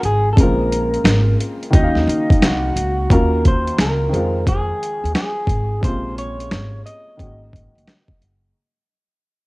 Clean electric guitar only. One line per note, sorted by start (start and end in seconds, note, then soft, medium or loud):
0.05 0.31 G#4 medium
0.33 0.37 A4 medium
0.41 1.37 A#4 medium
1.75 2.73 D#4 loud
2.45 3.14 F#4 medium
3.13 3.46 A#4 medium
3.48 3.81 C5 medium
3.81 4.44 A#4 medium
4.49 5.14 G#4 medium
5.16 5.84 G#4 medium
5.85 6.18 C5 medium
6.18 6.85 C#5 medium
6.86 8.18 D#5 medium